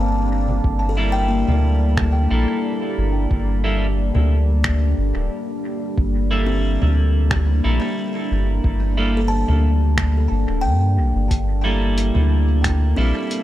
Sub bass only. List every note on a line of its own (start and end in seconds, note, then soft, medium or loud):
0.00 0.61 G1 medium
0.64 1.45 G1 medium
1.48 2.28 D2 loud
2.31 2.46 A#1 medium
2.98 3.27 G1 loud
3.31 4.12 G1 loud
4.15 4.95 D2 loud
4.98 5.13 G1 medium
5.15 5.29 D1 medium
5.98 6.78 G1 loud
6.82 7.61 D2 loud
7.64 7.80 A#1 medium
8.31 8.61 G1 loud
8.64 9.45 G1 medium
9.48 10.28 D2 loud
10.31 10.46 G1 medium
10.48 10.66 D1 medium
10.64 10.99 G2 medium
10.98 11.13 A#1 medium
11.15 11.29 G1 loud
11.31 12.12 G1 medium
12.15 12.95 D2 loud
12.98 13.13 A#1 medium